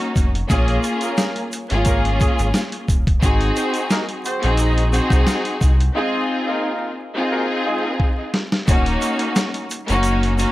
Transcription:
Already playing: A#3 C#4 D#4 F#4
0.00 closed hi-hat
0.16 F1, kick, closed hi-hat, shaker
0.35 closed hi-hat
0.49 A#1 G#3 A#3 C#4 F4 G#4, kick, closed hi-hat, shaker
0.68 closed hi-hat
0.84 closed hi-hat, shaker
1.01 A#3 C#4 F4 A#4, closed hi-hat, shaker
1.18 snare, closed hi-hat, shaker
1.36 closed hi-hat
1.52 closed hi-hat, shaker
1.70 G#1 A#3 C#4 F4 G#4, closed hi-hat
1.85 A#3 C#4 F4 A#4, kick, closed hi-hat, shaker
2.05 closed hi-hat
2.20 G#3 C#4 F4 G#4, kick, closed hi-hat, shaker
2.39 G#1, closed hi-hat, shaker
2.54 snare, closed hi-hat, shaker
2.72 closed hi-hat
2.88 D#1, kick, closed hi-hat, shaker
3.07 kick, closed hi-hat
3.22 G#1 C4 D#4 F#4 G#4, kick, closed hi-hat, shaker
3.41 closed hi-hat
3.56 C4 F#4 G#4 C5, closed hi-hat, shaker
3.74 closed hi-hat, shaker
3.90 A#3 D#4 F#4 A#4, snare, closed hi-hat, shaker
4.09 closed hi-hat
4.25 C4 F#4 G#4 C5, closed hi-hat, shaker
4.42 A#1 C4 D#4 F#4 G#4, closed hi-hat
4.57 D#4 G#4 C5 D#5, closed hi-hat, shaker
4.78 closed hi-hat
4.91 C4 D#4 F#4 G#4 C5, closed hi-hat, shaker
5.10 C2, kick, closed hi-hat, shaker
5.27 snare, closed hi-hat, shaker
5.45 closed hi-hat
5.61 C2, kick, closed hi-hat, shaker
5.80 closed hi-hat
5.95 G#3 C4 D#4 F4 G#4
6.48 A#3 D#4 F4 A#4
7.15 C4 D#4 F4 G#4
7.32 A#3 D#4 F#4 A#4
7.65 G#3 D#4 F4 G#4
8.00 kick
8.34 snare
8.52 snare
8.67 D#1 A#3 C#4 D#4 F#4, kick, closed hi-hat, shaker
8.86 closed hi-hat
9.02 closed hi-hat, shaker
9.19 closed hi-hat
9.36 snare, closed hi-hat, shaker
9.54 closed hi-hat
9.70 closed hi-hat, shaker
9.88 F#1 A#3 C#4 D#4 F#4, closed hi-hat, shaker
10.03 closed hi-hat, shaker
10.23 closed hi-hat
10.38 A#3 C#4 D#4 F#4, closed hi-hat, shaker

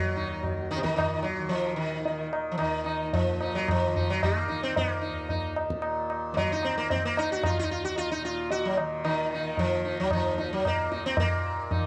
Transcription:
Already playing: D#2 A#2 D#3 F#3
0.14 D#2 D#4
0.43 tabla tin, tabla ge
0.71 D#3, tabla na
0.75 A#2 C3
0.83 D#3, tabla ke
0.96 D#3, tabla na, tabla ge
1.23 F#3, tabla te
1.39 D#3
1.49 F3, tabla tin
1.76 D#3
2.00 D#3
2.06 tabla tin
2.33 tabla na
2.52 F3
2.58 D#2 D#3, tabla na
2.84 D#4, tabla na
3.13 F3, tabla tin, tabla ge
3.22 A#2
3.41 D#4, tabla na
3.55 F#3
3.68 F3, tabla na, tabla ge
3.85 D#3
3.96 D#4, tabla ge
4.10 F#3
4.23 A#3, tabla na, tabla ge
4.47 D#3 D#4, tabla ge
4.63 C4
4.76 A#3, tabla tin, tabla ge
5.02 D#4
5.09 D#2
5.29 D#4, tabla tin, tabla ge
5.56 tabla na
5.69 A#2, tabla ke
5.82 tabla na
6.10 tabla na
6.32 D#3 A#3
6.37 F#3, tabla tin, tabla ge
6.52 D#4
6.63 C4, tabla na
6.78 A#3
6.90 D#3 C4, tabla tin, tabla ge
7.05 A#3
7.17 D#4, tabla na
7.32 F#4
7.43 F4, tabla na, tabla ge
7.55 D#2
7.59 D#4
7.71 F4
7.84 F#4
7.96 F4, tabla tin
8.11 D#4
8.17 A#2
8.25 F4
8.51 F#4, tabla tin
8.65 F#3
8.77 D#3, tabla na
9.04 D#3 D#4, tabla na
9.34 D#3 D#4
9.57 F3, tabla tin, tabla ge
9.85 D#4
10.00 D#2 F#3
10.11 F3 D#4, tabla na, tabla ge
10.38 D#4, tabla te
10.53 F#3
10.62 A#2, tabla na, tabla ge
10.67 A#3
10.92 D#4, tabla te
11.06 C4
11.17 A#2 A#3, tabla tin, tabla ge
11.71 D#4, tabla tin, tabla ge
11.79 D#3

